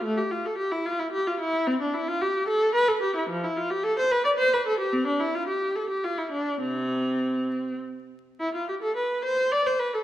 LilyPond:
\new Staff \with { instrumentName = "Viola" } { \time 3/4 \key f \lydian \tempo 4 = 110 << { a16 g'16 f'16 a'16 g'16 e'16 f'16 e'16 g'16 f'16 e'8 | \key c \major c'16 d'16 e'16 f'16 g'8 a'8 b'16 a'16 g'16 e'16 | f16 e'16 f'16 g'16 a'16 c''16 b'16 d''16 c''16 b'16 a'16 g'16 | c'16 d'16 e'16 f'16 g'8 a'16 g'16 f'16 e'16 d'8 |
c'2 r4 | e'16 f'16 g'16 a'16 b'8 c''8 d''16 c''16 b'16 a'16 | } \\ { r2. | r2. | r2. | r2. |
c4. r4. | r2. | } >> }